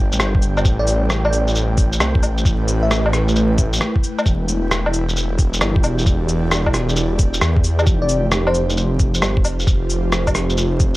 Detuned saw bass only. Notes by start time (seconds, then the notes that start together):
Already playing: G1
0.13 A1
0.20 G1
0.65 A1
2.00 C2
2.23 A1
2.45 A1
4.26 E1
5.61 G1
5.84 E1
6.06 E1
7.42 E2
7.87 F1
9.22 G1
9.45 F1
9.67 F1